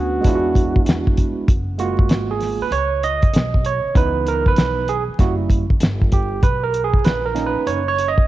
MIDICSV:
0, 0, Header, 1, 6, 480
1, 0, Start_track
1, 0, Key_signature, 6, "major"
1, 0, Tempo, 618557
1, 1150, Time_signature, 4, 2, 24, 8
1, 6421, End_track
2, 0, Start_track
2, 0, Title_t, "Flugelhorn"
2, 0, Program_c, 0, 56
2, 0, Note_on_c, 0, 66, 80
2, 915, Note_off_c, 0, 66, 0
2, 6421, End_track
3, 0, Start_track
3, 0, Title_t, "Tine electric piano"
3, 0, Program_c, 1, 4
3, 0, Note_on_c, 1, 57, 65
3, 0, Note_on_c, 1, 59, 61
3, 0, Note_on_c, 1, 61, 55
3, 0, Note_on_c, 1, 62, 59
3, 0, Note_on_c, 1, 66, 73
3, 157, Note_off_c, 1, 57, 0
3, 161, Note_on_c, 1, 56, 62
3, 164, Note_off_c, 1, 59, 0
3, 172, Note_off_c, 1, 61, 0
3, 178, Note_on_c, 1, 59, 55
3, 180, Note_off_c, 1, 62, 0
3, 189, Note_off_c, 1, 66, 0
3, 193, Note_on_c, 1, 62, 57
3, 208, Note_on_c, 1, 64, 59
3, 226, Note_on_c, 1, 65, 51
3, 273, Note_on_c, 1, 66, 69
3, 274, Note_off_c, 1, 65, 0
3, 1116, Note_off_c, 1, 56, 0
3, 1125, Note_off_c, 1, 59, 0
3, 1132, Note_off_c, 1, 62, 0
3, 1140, Note_off_c, 1, 64, 0
3, 1173, Note_off_c, 1, 66, 0
3, 1383, Note_on_c, 1, 56, 54
3, 1389, Note_on_c, 1, 58, 48
3, 1394, Note_on_c, 1, 65, 61
3, 1395, Note_on_c, 1, 66, 86
3, 1792, Note_on_c, 1, 68, 72
3, 1801, Note_off_c, 1, 66, 0
3, 2035, Note_on_c, 1, 71, 88
3, 2036, Note_off_c, 1, 68, 0
3, 2075, Note_off_c, 1, 56, 0
3, 2078, Note_off_c, 1, 58, 0
3, 2081, Note_off_c, 1, 65, 0
3, 2113, Note_on_c, 1, 73, 94
3, 2117, Note_off_c, 1, 71, 0
3, 2358, Note_on_c, 1, 75, 100
3, 2359, Note_off_c, 1, 73, 0
3, 2840, Note_on_c, 1, 73, 85
3, 2848, Note_off_c, 1, 75, 0
3, 3062, Note_on_c, 1, 52, 56
3, 3068, Note_on_c, 1, 59, 50
3, 3072, Note_on_c, 1, 63, 59
3, 3082, Note_off_c, 1, 73, 0
3, 3082, Note_on_c, 1, 71, 89
3, 3323, Note_off_c, 1, 71, 0
3, 3324, Note_on_c, 1, 70, 85
3, 3475, Note_on_c, 1, 71, 99
3, 3478, Note_off_c, 1, 70, 0
3, 3755, Note_off_c, 1, 52, 0
3, 3758, Note_off_c, 1, 59, 0
3, 3760, Note_off_c, 1, 63, 0
3, 3795, Note_on_c, 1, 68, 86
3, 3804, Note_off_c, 1, 71, 0
3, 3902, Note_off_c, 1, 68, 0
3, 4025, Note_on_c, 1, 55, 54
3, 4029, Note_on_c, 1, 58, 49
3, 4037, Note_on_c, 1, 64, 58
3, 4039, Note_on_c, 1, 66, 78
3, 4145, Note_off_c, 1, 66, 0
3, 4374, Note_off_c, 1, 55, 0
3, 4377, Note_off_c, 1, 58, 0
3, 4381, Note_off_c, 1, 64, 0
3, 4760, Note_on_c, 1, 67, 76
3, 4992, Note_on_c, 1, 71, 88
3, 5002, Note_off_c, 1, 67, 0
3, 5140, Note_off_c, 1, 71, 0
3, 5150, Note_on_c, 1, 70, 85
3, 5299, Note_off_c, 1, 70, 0
3, 5310, Note_on_c, 1, 68, 82
3, 5459, Note_off_c, 1, 68, 0
3, 5471, Note_on_c, 1, 71, 88
3, 5619, Note_off_c, 1, 71, 0
3, 5630, Note_on_c, 1, 70, 80
3, 5698, Note_on_c, 1, 58, 57
3, 5704, Note_on_c, 1, 61, 53
3, 5706, Note_on_c, 1, 63, 62
3, 5791, Note_on_c, 1, 71, 87
3, 5795, Note_off_c, 1, 70, 0
3, 5951, Note_on_c, 1, 73, 92
3, 5955, Note_off_c, 1, 71, 0
3, 6051, Note_off_c, 1, 58, 0
3, 6054, Note_off_c, 1, 61, 0
3, 6055, Note_off_c, 1, 63, 0
3, 6106, Note_off_c, 1, 73, 0
3, 6115, Note_on_c, 1, 73, 93
3, 6272, Note_on_c, 1, 75, 93
3, 6277, Note_off_c, 1, 73, 0
3, 6421, Note_off_c, 1, 75, 0
3, 6421, End_track
4, 0, Start_track
4, 0, Title_t, "Upright bass"
4, 0, Program_c, 2, 32
4, 0, Note_on_c, 2, 38, 88
4, 178, Note_off_c, 2, 38, 0
4, 189, Note_on_c, 2, 40, 91
4, 645, Note_off_c, 2, 40, 0
4, 670, Note_on_c, 2, 40, 89
4, 1047, Note_off_c, 2, 40, 0
4, 1150, Note_on_c, 2, 30, 89
4, 1623, Note_off_c, 2, 30, 0
4, 1623, Note_on_c, 2, 32, 85
4, 2003, Note_off_c, 2, 32, 0
4, 2100, Note_on_c, 2, 37, 85
4, 2561, Note_off_c, 2, 37, 0
4, 2587, Note_on_c, 2, 35, 86
4, 2965, Note_off_c, 2, 35, 0
4, 3068, Note_on_c, 2, 37, 101
4, 3525, Note_off_c, 2, 37, 0
4, 3545, Note_on_c, 2, 35, 86
4, 3924, Note_off_c, 2, 35, 0
4, 4029, Note_on_c, 2, 30, 96
4, 4486, Note_off_c, 2, 30, 0
4, 4504, Note_on_c, 2, 31, 79
4, 4963, Note_off_c, 2, 31, 0
4, 4989, Note_on_c, 2, 35, 93
4, 5446, Note_off_c, 2, 35, 0
4, 5469, Note_on_c, 2, 34, 90
4, 5847, Note_off_c, 2, 34, 0
4, 5947, Note_on_c, 2, 30, 85
4, 6405, Note_off_c, 2, 30, 0
4, 6421, End_track
5, 0, Start_track
5, 0, Title_t, "Muted upright bass strokes"
5, 1062, Note_on_c, 9, 29, 42
5, 1139, Note_off_c, 9, 29, 0
5, 2022, Note_on_c, 9, 29, 40
5, 2100, Note_off_c, 9, 29, 0
5, 2984, Note_on_c, 9, 29, 42
5, 3062, Note_off_c, 9, 29, 0
5, 3945, Note_on_c, 9, 29, 44
5, 4022, Note_off_c, 9, 29, 0
5, 5866, Note_on_c, 9, 29, 43
5, 5943, Note_off_c, 9, 29, 0
5, 6421, End_track
6, 0, Start_track
6, 0, Title_t, "Drums"
6, 188, Note_on_c, 9, 42, 85
6, 191, Note_on_c, 9, 36, 87
6, 203, Note_on_c, 9, 38, 33
6, 266, Note_off_c, 9, 42, 0
6, 268, Note_off_c, 9, 36, 0
6, 281, Note_off_c, 9, 38, 0
6, 429, Note_on_c, 9, 36, 82
6, 436, Note_on_c, 9, 42, 75
6, 507, Note_off_c, 9, 36, 0
6, 513, Note_off_c, 9, 42, 0
6, 588, Note_on_c, 9, 36, 91
6, 666, Note_off_c, 9, 36, 0
6, 669, Note_on_c, 9, 42, 85
6, 690, Note_on_c, 9, 38, 109
6, 747, Note_off_c, 9, 42, 0
6, 767, Note_off_c, 9, 38, 0
6, 831, Note_on_c, 9, 36, 86
6, 909, Note_off_c, 9, 36, 0
6, 911, Note_on_c, 9, 42, 67
6, 915, Note_on_c, 9, 36, 83
6, 989, Note_off_c, 9, 42, 0
6, 993, Note_off_c, 9, 36, 0
6, 1150, Note_on_c, 9, 36, 121
6, 1150, Note_on_c, 9, 42, 79
6, 1227, Note_off_c, 9, 36, 0
6, 1227, Note_off_c, 9, 42, 0
6, 1387, Note_on_c, 9, 42, 66
6, 1465, Note_off_c, 9, 42, 0
6, 1543, Note_on_c, 9, 36, 92
6, 1620, Note_off_c, 9, 36, 0
6, 1623, Note_on_c, 9, 42, 75
6, 1637, Note_on_c, 9, 38, 109
6, 1701, Note_off_c, 9, 42, 0
6, 1714, Note_off_c, 9, 38, 0
6, 1866, Note_on_c, 9, 46, 54
6, 1875, Note_on_c, 9, 38, 35
6, 1944, Note_off_c, 9, 46, 0
6, 1953, Note_off_c, 9, 38, 0
6, 2109, Note_on_c, 9, 42, 83
6, 2187, Note_off_c, 9, 42, 0
6, 2354, Note_on_c, 9, 42, 73
6, 2432, Note_off_c, 9, 42, 0
6, 2502, Note_on_c, 9, 42, 46
6, 2505, Note_on_c, 9, 36, 95
6, 2579, Note_off_c, 9, 42, 0
6, 2583, Note_off_c, 9, 36, 0
6, 2589, Note_on_c, 9, 42, 92
6, 2609, Note_on_c, 9, 38, 108
6, 2666, Note_off_c, 9, 42, 0
6, 2687, Note_off_c, 9, 38, 0
6, 2749, Note_on_c, 9, 36, 79
6, 2826, Note_off_c, 9, 36, 0
6, 2829, Note_on_c, 9, 42, 70
6, 2907, Note_off_c, 9, 42, 0
6, 3068, Note_on_c, 9, 36, 119
6, 3070, Note_on_c, 9, 42, 82
6, 3145, Note_off_c, 9, 36, 0
6, 3147, Note_off_c, 9, 42, 0
6, 3310, Note_on_c, 9, 42, 68
6, 3388, Note_off_c, 9, 42, 0
6, 3461, Note_on_c, 9, 36, 85
6, 3539, Note_off_c, 9, 36, 0
6, 3542, Note_on_c, 9, 42, 78
6, 3555, Note_on_c, 9, 38, 113
6, 3619, Note_off_c, 9, 42, 0
6, 3633, Note_off_c, 9, 38, 0
6, 3787, Note_on_c, 9, 42, 71
6, 3865, Note_off_c, 9, 42, 0
6, 4028, Note_on_c, 9, 36, 87
6, 4028, Note_on_c, 9, 42, 76
6, 4043, Note_on_c, 9, 38, 31
6, 4106, Note_off_c, 9, 36, 0
6, 4106, Note_off_c, 9, 42, 0
6, 4120, Note_off_c, 9, 38, 0
6, 4265, Note_on_c, 9, 36, 86
6, 4270, Note_on_c, 9, 42, 74
6, 4343, Note_off_c, 9, 36, 0
6, 4348, Note_off_c, 9, 42, 0
6, 4425, Note_on_c, 9, 36, 90
6, 4502, Note_off_c, 9, 36, 0
6, 4504, Note_on_c, 9, 42, 98
6, 4525, Note_on_c, 9, 38, 116
6, 4582, Note_off_c, 9, 42, 0
6, 4602, Note_off_c, 9, 38, 0
6, 4668, Note_on_c, 9, 36, 76
6, 4746, Note_off_c, 9, 36, 0
6, 4748, Note_on_c, 9, 42, 68
6, 4753, Note_on_c, 9, 36, 85
6, 4826, Note_off_c, 9, 42, 0
6, 4830, Note_off_c, 9, 36, 0
6, 4988, Note_on_c, 9, 36, 118
6, 4988, Note_on_c, 9, 42, 80
6, 5065, Note_off_c, 9, 42, 0
6, 5066, Note_off_c, 9, 36, 0
6, 5229, Note_on_c, 9, 42, 65
6, 5307, Note_off_c, 9, 42, 0
6, 5382, Note_on_c, 9, 36, 91
6, 5460, Note_off_c, 9, 36, 0
6, 5467, Note_on_c, 9, 42, 77
6, 5480, Note_on_c, 9, 38, 110
6, 5544, Note_off_c, 9, 42, 0
6, 5558, Note_off_c, 9, 38, 0
6, 5710, Note_on_c, 9, 42, 75
6, 5719, Note_on_c, 9, 38, 32
6, 5787, Note_off_c, 9, 42, 0
6, 5796, Note_off_c, 9, 38, 0
6, 5951, Note_on_c, 9, 42, 82
6, 6029, Note_off_c, 9, 42, 0
6, 6196, Note_on_c, 9, 42, 79
6, 6273, Note_off_c, 9, 42, 0
6, 6346, Note_on_c, 9, 36, 91
6, 6421, Note_off_c, 9, 36, 0
6, 6421, End_track
0, 0, End_of_file